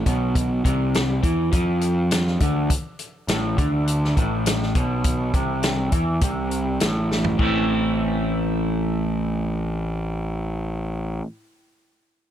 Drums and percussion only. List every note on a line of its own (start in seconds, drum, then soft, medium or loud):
0.06 kick medium
0.06 closed hi-hat medium
0.35 kick loud
0.35 closed hi-hat loud
0.65 kick loud
0.65 closed hi-hat medium
0.94 snare loud
0.94 closed hi-hat medium
1.23 kick loud
1.23 closed hi-hat medium
1.52 kick loud
1.52 closed hi-hat medium
1.81 closed hi-hat medium
2.11 snare loud
2.11 closed hi-hat loud
2.27 snare soft
2.40 kick loud
2.40 closed hi-hat medium
2.70 kick loud
2.70 closed hi-hat loud
2.99 closed hi-hat medium
3.28 snare loud
3.28 closed hi-hat medium
3.58 kick loud
3.58 closed hi-hat medium
3.87 closed hi-hat loud
4.04 snare soft
4.17 kick loud
4.17 closed hi-hat medium
4.46 snare loud
4.46 closed hi-hat loud
4.62 snare soft
4.75 kick loud
4.75 closed hi-hat medium
5.04 kick loud
5.04 closed hi-hat loud
5.34 kick loud
5.34 closed hi-hat medium
5.63 snare loud
5.63 closed hi-hat medium
5.92 kick loud
5.92 closed hi-hat medium
6.21 kick loud
6.21 closed hi-hat loud
6.51 closed hi-hat medium
6.80 snare loud
6.80 closed hi-hat medium
7.11 snare medium
7.24 floor tom loud
7.39 kick loud